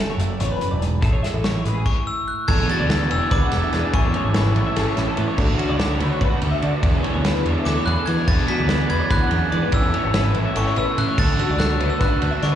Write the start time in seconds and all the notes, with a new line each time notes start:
Already playing: F#1 F#2 A3 C#4 E4
0.00 F#3
0.10 C#5
0.18 F#1 A3 E5, closed hi-hat
0.30 D5
0.40 A1 E2 C#5, closed hi-hat
0.51 F#1 B4
0.61 F#2, closed hi-hat
0.71 E1 D5
0.82 G#2 C#5, closed hi-hat
0.93 B4
1.02 A1 A2 G#4 A4, kick, closed hi-hat
1.13 C#5
1.23 G#3 E5, snare, closed hi-hat
1.34 A1 A4
1.44 E3 C#5, snare, closed hi-hat
1.64 A1 G#3 B4, closed hi-hat
1.74 G#4
1.86 C#6, kick, crash
2.07 E6
2.28 F#6
2.48 E1 E2 E3 B3 D4 G#4 A4 G#6, kick, crash
2.59 B1
2.69 A3 B3 D4 F#4 G#4 A6, ride
2.79 D2 D5
2.89 E3 B3 D4 G#4 B4, snare, ride
3.01 D5
3.10 E1 E3 B3 D4 G#4 B4 E6, ride
3.21 C#5
3.31 D2 E3 B3 D4 F#4 G#4 B4 D6, kick, snare, ride
3.42 F#5
3.52 E1 E3 A3 B3 D4 G#4, snare, ride
3.64 E5
3.72 E2 E3 B3 D4 G#4 D5, snare, ride
3.84 D4 B4
3.92 A1 A2 E3 A3 C#4 E4 G#4 C#6, kick, ride
4.04 E2 A4
4.13 G#3 A3 C#4 E4 C#5, ride
4.25 G#1 C#5
4.34 E3 A3 C#4 E4 B4, snare, ride
4.55 A1 A2 E3 A3 B3 C#4 E4 C#5, ride
4.66 E5
4.75 G#1 E3 A3 C#4 E4 G#4 A4, snare, ride
4.87 C#5
4.96 A1 A2 E3 A3 C#4 E4 B4, snare, ride
5.07 A4
5.17 A2 E3 A3 B3 C#4 E4 B4, ride
5.28 C#5
5.38 D2 D3 A3 D4 F#4 A4, kick, crash
5.50 A1
5.58 A3 C#4 D4 F#4, ride
5.69 C#2 D5
5.78 D3 A3 D4 F#4 A4, snare, ride
5.90 C#5
5.99 D2 D3 A3 D4 E4 F#4 B4, ride
6.10 F#4 C#5
6.20 C#2 D3 A3 D4 F#4 B4, kick, ride
6.30 F#5
6.41 D2 D3 A3 D4 F#4, ride
6.51 E5
6.62 D3 A3 D4 F#4 D5, ride
6.73 B4
6.83 E2 E3 B3 D4 G#4 A4, kick, ride
6.94 B1 B4
7.03 A3 B3 D4 G#4 C#5, ride
7.14 D2 C#5
7.24 E3 B3 D4 G#4 B4, snare, ride
7.45 E2 E3 B3 D4 G#4 C#5, ride
7.56 E5
7.65 D2 E3 B3 D4 F#4 G#4 A4 D6, snare, ride
7.77 C#5
7.86 E2 E3 A3 B3 D4 G#4 B4 F#6, ride
7.97 A4
8.06 E3 B3 D4 G#4 B4 G#6, ride
8.18 D4 C#5
8.27 E2 E3 A3 B3 D4 G#4 A4 A6, kick, crash
8.31 F#4
8.38 B1
8.48 A3 B3 D4 F#4 G#4 B6, ride
8.59 D2 D5
8.69 E3 B3 D4 G#4 B4, snare, ride
8.79 D5
8.89 E2 E3 B3 D4 G#4 B4 G#6, ride
9.00 D4 C#5
9.10 D2 E2 E3 B3 D4 G#4 B4 F#6, kick, snare, ride
9.21 F#5
9.31 E2 F#2 E3 B3 D4 G#4, ride
9.41 E5
9.52 G#2 E3 B3 D4 G#4 D5, ride
9.62 B4
9.71 A1 A2 E3 A3 C#4 E4 G#4 E6, kick, ride
9.83 E2 A4
9.94 A3 C#4 E4 C#5, ride
10.05 G#1 C#5
10.14 E3 A3 C#4 B4, snare, ride
10.18 E4
10.34 A1 A2 E3 A3 C#4 E4 C#5, ride
10.46 E5
10.55 G#1 A2 E3 A3 C#4 E4 A4 C#6, ride
10.67 C#5
10.76 A1 A2 B2 E3 A3 C#4 E4 B4 E6, ride
10.88 A4
10.96 A2 C#3 E3 A3 C#4 E4 B4 F#6, ride
11.08 C#5
11.17 D2 D3 A3 D4 F#4 A4 A6, kick, crash
11.29 A1
11.39 A3 B3 D4 F#4 E6, ride
11.50 C#2 D5
11.59 D3 A3 D4 F#4 A4 F#6, snare, ride
11.70 C#5
11.80 D2 D3 A3 D4 E4 F#4 B4, ride
11.90 F#4 C#5 E6
12.00 C#2 D3 A3 D4 F#4 B4 F#6, kick, snare, ride
12.05 F#4
12.11 F#5
12.21 D2 D3 A3 B3 D4 F#4, ride
12.31 C#4 E5
12.42 D3 A3 D4 F#4 D5 C#6, snare, ride
12.52 B4